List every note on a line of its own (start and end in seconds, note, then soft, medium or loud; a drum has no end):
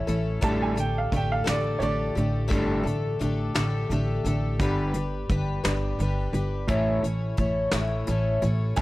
0.07 0.42 A1 medium
0.07 0.40 A2 medium
0.07 0.40 E3 medium
0.07 0.41 A3 soft
0.07 0.42 C#4 soft
0.07 0.43 E4 soft
0.07 0.42 A4 medium
0.07 closed hi-hat soft
0.41 1.10 A1 medium
0.41 0.77 A2 medium
0.41 0.76 A2 medium
0.41 0.77 D3 medium
0.41 0.76 D3 medium
0.41 0.76 G3 medium
0.41 0.77 A3 medium
0.41 0.77 D4 medium
0.41 0.76 G4 medium
0.41 0.75 A4 medium
0.41 0.60 A5 medium
0.41 kick loud
0.41 closed hi-hat medium
0.62 0.78 G#5 medium
0.76 1.09 A2 medium
0.76 1.09 D3 medium
0.76 1.11 A3 soft
0.76 1.11 D4 soft
0.76 1.12 G4 soft
0.76 1.12 A4 soft
0.76 0.95 G5 medium
0.76 closed hi-hat medium
0.98 1.13 F5 medium
1.12 1.45 A1 medium
1.12 1.44 A2 medium
1.12 1.44 D3 medium
1.12 1.45 A3 medium
1.12 1.44 D4 medium
1.12 1.44 G4 medium
1.12 1.43 A4 medium
1.12 kick medium
1.12 closed hi-hat medium
1.16 1.31 G5 medium
1.32 1.47 F5 medium
1.44 1.79 A1 medium
1.44 1.82 A2 medium
1.44 1.79 A2 medium
1.44 1.82 D3 medium
1.44 1.79 D3 medium
1.44 1.79 A3 medium
1.44 1.80 D4 medium
1.44 1.80 G4 medium
1.44 1.81 A4 medium
1.44 snare loud
1.44 closed hi-hat medium
1.49 1.81 D5 medium
1.79 2.15 A1 medium
1.79 2.14 A2 medium
1.79 2.16 A3 medium
1.79 2.16 D4 medium
1.79 2.14 G4 medium
1.79 2.14 A4 medium
1.79 1.83 C#5 medium
1.79 3.18 D5 medium
1.79 closed hi-hat medium
1.83 2.14 D3 medium
2.15 2.50 A1 medium
2.15 2.49 A2 medium
2.15 2.49 D3 medium
2.15 2.48 A3 soft
2.15 2.47 D4 soft
2.15 2.49 G4 soft
2.15 2.49 A4 medium
2.15 closed hi-hat medium
2.48 2.84 G1 medium
2.48 2.85 A2 medium
2.48 2.85 D3 medium
2.48 2.85 A3 medium
2.48 2.85 D4 medium
2.48 2.84 G4 medium
2.48 2.82 A4 medium
2.48 kick medium
2.52 2.84 A2 medium
2.52 2.85 D3 medium
2.52 2.85 G3 medium
2.52 closed hi-hat medium
2.83 3.19 A1 medium
2.83 3.17 A2 medium
2.83 3.18 D3 medium
2.83 3.18 A3 soft
2.83 3.19 D4 soft
2.83 3.20 G4 soft
2.83 3.20 A4 medium
2.83 closed hi-hat soft
3.19 3.54 A1 medium
3.19 3.53 A2 medium
3.19 3.53 D3 medium
3.19 3.55 A3 medium
3.19 3.54 D4 medium
3.19 3.54 G4 medium
3.19 3.53 A4 medium
3.19 closed hi-hat medium
3.55 3.89 A1 medium
3.55 3.88 A2 medium
3.55 3.91 A2 medium
3.55 3.91 D3 medium
3.55 3.88 D3 medium
3.55 3.89 A3 medium
3.55 3.90 D4 medium
3.55 3.91 G4 medium
3.55 3.90 A4 medium
3.55 snare loud
3.55 closed hi-hat medium
3.89 4.24 A1 medium
3.89 4.23 A2 medium
3.89 4.23 D3 medium
3.89 4.25 A3 soft
3.89 4.26 D4 medium
3.89 4.25 G4 medium
3.89 4.23 A4 medium
3.89 closed hi-hat medium
4.24 4.59 A1 medium
4.24 4.58 A2 medium
4.24 4.58 D3 medium
4.24 4.59 A3 soft
4.24 4.58 D4 soft
4.24 4.60 G4 soft
4.24 4.60 A4 soft
4.24 closed hi-hat soft
4.59 5.27 G1 medium
4.59 4.93 G2 medium
4.59 4.93 D3 medium
4.59 4.95 G3 medium
4.59 4.94 G3 medium
4.59 4.95 D4 medium
4.59 4.95 G4 medium
4.59 4.94 B4 medium
4.59 kick loud
4.59 closed hi-hat medium
4.94 5.27 G2 medium
4.94 5.27 D3 medium
4.94 5.29 D4 soft
4.94 5.30 G4 soft
4.94 5.30 B4 soft
4.94 closed hi-hat soft
5.29 5.64 G1 medium
5.29 5.61 G2 medium
5.29 5.62 D3 medium
5.29 5.63 G3 medium
5.29 5.63 D4 medium
5.29 5.63 G4 medium
5.29 5.62 B4 medium
5.29 kick medium
5.29 closed hi-hat medium
5.64 5.98 G1 medium
5.64 5.96 G2 medium
5.64 5.97 D3 medium
5.64 5.98 G3 medium
5.64 6.00 D4 medium
5.64 5.99 G4 medium
5.64 5.99 B4 medium
5.64 snare loud
5.64 closed hi-hat medium
5.99 6.32 G1 medium
5.99 6.31 G2 medium
5.99 6.32 D3 medium
5.99 6.34 G3 soft
5.99 6.35 D4 medium
5.99 6.33 G4 medium
5.99 6.32 B4 medium
5.99 closed hi-hat medium
6.33 6.67 G1 medium
6.33 6.65 G2 medium
6.33 6.66 D3 medium
6.33 6.68 D4 soft
6.33 6.69 G4 soft
6.33 6.69 B4 medium
6.33 closed hi-hat medium
6.68 7.02 A1 medium
6.68 7.01 A2 medium
6.68 7.04 A2 medium
6.68 7.04 E3 medium
6.68 7.02 E3 medium
6.68 7.02 A3 medium
6.68 7.04 A3 medium
6.68 7.04 C#4 medium
6.68 7.04 E4 medium
6.68 7.03 C#5 medium
6.68 kick loud
6.68 closed hi-hat medium
7.03 7.37 A1 medium
7.03 7.35 A2 medium
7.03 7.35 E3 medium
7.03 7.36 C#4 soft
7.03 7.37 E4 soft
7.03 7.38 C#5 medium
7.03 closed hi-hat medium
7.07 7.36 A3 soft
7.37 7.72 A1 medium
7.37 7.70 A2 medium
7.37 7.70 E3 medium
7.37 7.73 A3 medium
7.37 7.73 C#4 medium
7.37 7.72 E4 medium
7.37 7.72 C#5 medium
7.37 kick medium
7.37 closed hi-hat medium
7.72 8.07 A1 medium
7.72 8.05 A2 medium
7.72 8.09 A2 medium
7.72 8.05 E3 medium
7.72 8.09 E3 medium
7.72 8.08 A3 medium
7.72 8.08 C#4 medium
7.72 8.08 E4 medium
7.72 8.08 C#5 medium
7.72 snare loud
7.72 closed hi-hat medium
8.07 8.42 A1 medium
8.07 8.39 A2 medium
8.07 8.40 E3 medium
8.07 8.44 A3 medium
8.07 8.43 C#4 medium
8.07 8.43 E4 medium
8.07 closed hi-hat medium
8.11 8.42 C#5 medium
8.42 8.76 A1 medium
8.42 8.74 A2 medium
8.42 8.75 E3 medium
8.42 8.77 C#4 soft
8.42 8.77 E4 soft
8.42 8.78 C#5 medium
8.42 closed hi-hat medium
8.46 8.77 A3 soft
8.76 8.82 A1 medium
8.76 8.82 A2 medium
8.76 8.82 D3 medium
8.76 8.82 G3 medium
8.76 8.82 D4 medium
8.76 8.82 G4 medium
8.76 8.80 G#5 medium
8.76 kick loud
8.76 closed hi-hat medium